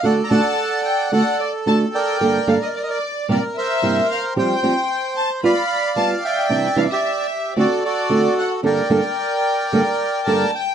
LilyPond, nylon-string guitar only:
\new Staff \with { instrumentName = "Nylon-string guitar" } { \time 4/4 \key g \minor \tempo 4 = 111 <d a d' fis'>8 <d a d' fis'>8 r4 <d a d' fis'>8 r8 <d a d' fis'>8 r8 | <g, d g bes d' a'>8 <g, d g bes d' a'>8 r4 <g, c g bes e' g'>8 r8 <g, c g bes e' g'>8 r8 | <f g c' g'>8 <f g c' g'>8 r4 <g b f'>8 r8 <g b f'>8 r8 | <c e g d' e'>8 <c e g d' e'>8 r4 <d a c' fis'>8 r8 <d a c' fis'>8 r8 |
<g, d g bes d' a'>8 <g, d g bes d' a'>8 r4 <g, d g bes d' a'>8 r8 <g, d g bes d' a'>8 r8 | }